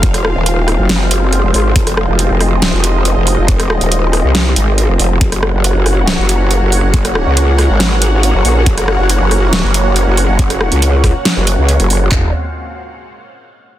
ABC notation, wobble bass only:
X:1
M:4/4
L:1/16
Q:1/4=139
K:Fphr
V:1 name="Wobble bass" clef=bass
F,,,3 E,,,4 G,,,6 F,,, A,,,2 | F,,,3 F,,,2 F,,,4 F,,,4 F,,,2 F,,,- | F,,,3 E,,,4 C,,3 A,,,3 F,,, F,,,2 | G,,,3 G,,,2 G,,,4 G,,,4 G,,,2 G,,,- |
G,,,3 D,,4 A,,,6 G,,, B,,,2 | G,,,3 G,,,2 G,,,4 G,,,4 G,,,2 G,,,- | G,,,3 D,,4 z2 G,,,2 D,,2 G,,,3 | F,,,2 z12 z2 |]